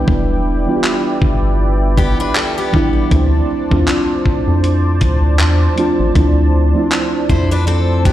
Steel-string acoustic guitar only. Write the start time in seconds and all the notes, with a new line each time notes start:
1.98 B3 G4
2.20 D4 B4
2.36 A4
2.58 B3 G4
7.29 E4 C5
7.51 D4 B4
7.67 C4 A4
8.05 B3 G4